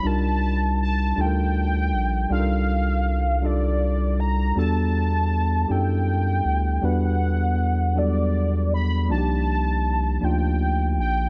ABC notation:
X:1
M:6/8
L:1/8
Q:3/8=53
K:Clyd
V:1 name="Soft synth lead"
a2 a g3 | =f3 d2 _b | a3 g3 | f3 d2 b |
a3 g2 g |]
V:2 name="Tine electric piano"
[G,D_E=F_B]2 z [G,DEFAB]2 z | [G,D_E=FA_B]2 z [G,DEFA]2 z | [G,B,DFA]2 z [B,DEGA]2 z | [G,B,DFB]2 z [F,G,B,DFA]2 z |
[=F,_B,D_E^FG]2 z [=F,B,DE=F]2 z |]
V:3 name="Analog synth bass" clef=bass
C,,3 D,,2 _B,,, | C,,6 | E,,3 F,,2 D,, | E,,6 |
C,,3 D,,2 _B,,, |]